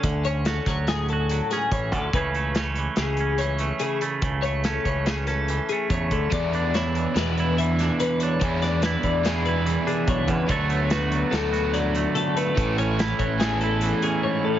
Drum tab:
HH |xxxxxxxxxx|xxxxxxxxxx|xxxxxxxxxx|xxxxxxxxxx|
SD |--ooo--o--|--o-o-----|--o-oo----|--o-o--o--|
BD |o--o----oo|o---------|o--o----oo|o---------|

HH |xxxxxxxxxx|xxxxxxxxxx|xxxxxxxx--|
SD |-oo-o-----|--o-oo----|--o-o-----|
BD |o--o----oo|o---------|o--o------|